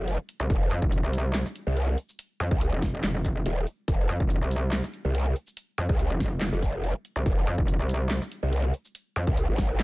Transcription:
Already playing: F1
0.08 closed hi-hat
0.29 closed hi-hat
0.40 C2
0.50 F1, kick, closed hi-hat
0.71 F2, closed hi-hat
0.82 F1, kick
0.92 closed hi-hat
1.03 C2
1.13 closed hi-hat, shaker
1.34 snare, clap, closed hi-hat
1.46 shaker
1.56 closed hi-hat
1.67 C2
1.77 closed hi-hat
1.98 closed hi-hat
2.09 shaker
2.19 closed hi-hat
2.40 F2, closed hi-hat
2.51 C2, kick
2.61 closed hi-hat
2.72 F1
2.82 kick, snare, closed hi-hat, shaker
3.03 F1, snare, clap, closed hi-hat
3.25 kick, closed hi-hat, shaker
3.46 D#1, closed hi-hat
3.67 closed hi-hat
3.88 F1, kick, closed hi-hat
4.09 F2, closed hi-hat
4.20 F1, kick
4.30 closed hi-hat
4.41 C2
4.51 closed hi-hat, shaker
4.72 snare, clap, closed hi-hat
4.84 shaker
4.94 closed hi-hat
5.05 C2
5.15 closed hi-hat
5.36 closed hi-hat
5.47 shaker
5.57 closed hi-hat
5.78 F2, closed hi-hat
5.89 C2, kick
5.99 closed hi-hat
6.10 F1
6.20 kick, snare, closed hi-hat, shaker
6.41 snare, clap, closed hi-hat
6.53 F1
6.63 kick, closed hi-hat, shaker
6.84 closed hi-hat
7.05 closed hi-hat
7.16 C2
7.26 F1, kick, closed hi-hat
7.47 F2, closed hi-hat
7.58 F1, kick
7.68 closed hi-hat
7.79 C2
7.89 closed hi-hat, shaker
8.10 snare, clap, closed hi-hat
8.22 shaker
8.32 closed hi-hat
8.43 C2
8.53 closed hi-hat
8.74 closed hi-hat
8.85 shaker
8.95 closed hi-hat
9.16 F2, closed hi-hat
9.27 C2, kick
9.37 closed hi-hat
9.48 G#1
9.58 kick, snare, closed hi-hat, shaker
9.79 snare, clap, closed hi-hat

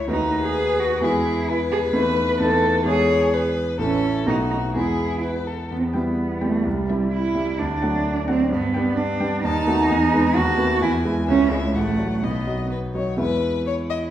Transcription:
Already playing: C#2 A3 E4 E5
0.08 D#2 A3 D#4 F#4 B4
0.44 G#4
0.79 F#4
1.00 E2 G#3 E4 G#4 B4
1.49 E4 B4
1.72 G#4
1.93 E2 A3 D#4 B4
2.39 E2 A3 D#4 A4 B4
2.85 E2 G#3 E4 G#4 B4 C#5
3.33 B4
3.79 A1 A3 C#4 E4 A4
4.26 B1 A3 B3 D#4 F#4
4.51 D#4
4.75 E2 G#3 B3 E4 G#4
5.23 B4
5.47 A4
5.71 E2 B3
5.79 C4
5.85 B3
5.94 G3 B3 E4 G5
6.42 G3 A3 B3 E4 G5
6.65 C2 G3
6.90 G3 C4 E4 E5
7.12 E4
7.35 G3 C4 E4 E5
7.59 D2 D4
7.82 F#3 A3 D4 F#5
8.28 F#3 A3 C4 D4 F#5
8.51 G2 B3
8.74 G3 B3 D4 G5
8.97 D4
9.20 G3 B3 D4 G5
9.43 D#2 D#4 A5
9.67 A3 B3 F#4
9.90 E2 G#5
10.13 G#3 B3 B4
10.35 D#2 F#4 A5
10.57 A3 B3 B4
10.81 E2 E4 G#5
11.05 G#3 E4 B4
11.28 C#2 C#4 E5
11.51 G#3 E4 C#5
11.74 A1 A3 F#5
11.98 F#3 F#4 C#5
12.22 B1 B3 D#5
12.47 F#3 F#4 D#5
12.71 B4
12.95 F#3 F#4 C#5 D#5
13.16 E2 G#3 E4 B4 E5
13.65 E4 C#5
13.90 D#5

